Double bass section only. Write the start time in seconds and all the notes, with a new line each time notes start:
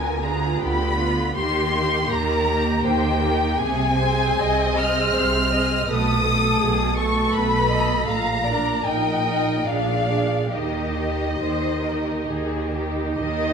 Already playing: D2
0.61 D2
1.36 D#2
2.10 D#2
2.85 D#2
3.61 C2
4.40 C2
5.18 C2
5.90 B1
6.62 B1
7.34 B1
8.09 A#1
8.86 A#1
9.67 A#1
10.53 D#2
11.40 D#2
12.29 D#2
13.19 D#2